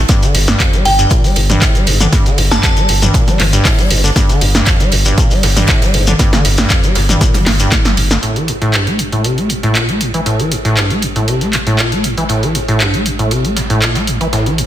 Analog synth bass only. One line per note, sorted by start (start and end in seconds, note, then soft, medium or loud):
0.35 0.55 G1 loud
0.85 1.06 G1 loud
1.36 1.57 G1 loud
1.87 2.08 G1 loud
2.38 2.59 G1 loud
2.89 3.10 G1 loud
3.40 3.60 G1 loud
3.91 4.11 G1 loud
4.41 4.62 G1 loud
4.92 5.13 G1 loud
5.43 5.64 G1 loud
5.94 6.15 G1 loud
6.45 6.65 G1 loud
6.96 7.16 G1 loud
7.46 7.67 G1 loud
7.97 8.18 G1 loud
8.23 14.66 A1 medium